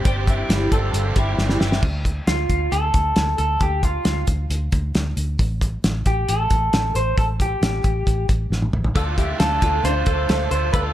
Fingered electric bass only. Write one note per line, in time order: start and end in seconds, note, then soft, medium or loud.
0.05 0.42 G1 loud
0.49 0.68 G1 loud
0.72 0.90 G1 medium
0.93 1.12 G1 loud
1.16 1.34 G1 medium
1.38 1.57 G1 loud
1.61 1.79 G1 medium
1.83 2.19 D2 medium
2.27 2.46 D2 medium
2.49 2.68 D2 medium
2.72 2.90 D2 medium
2.95 3.13 D2 medium
3.17 3.35 D2 medium
3.39 3.57 D2 medium
3.61 3.97 D2 medium
4.05 4.24 D2 medium
4.28 4.46 D2 medium
4.50 4.68 D2 medium
4.73 4.91 D2 medium
4.95 5.13 D2 medium
5.17 5.35 D2 medium
5.39 5.76 A1 medium
5.84 6.02 A1 medium
6.06 6.24 A1 medium
6.29 6.47 A1 medium
6.51 6.69 A1 medium
6.73 6.91 A1 medium
6.95 7.13 A1 medium
7.18 7.54 A1 medium
7.62 7.80 A1 medium
7.84 8.03 A1 medium
8.07 8.25 A1 medium
8.29 8.47 A1 medium
8.50 8.69 A1 medium
8.73 8.92 A1 medium
8.96 9.32 D2 medium
9.40 9.58 D2 medium
9.62 9.81 D2 medium
9.84 10.02 D2 loud
10.07 10.25 D2 medium
10.29 10.48 D2 medium
10.51 10.70 D2 medium
10.74 10.93 D2 medium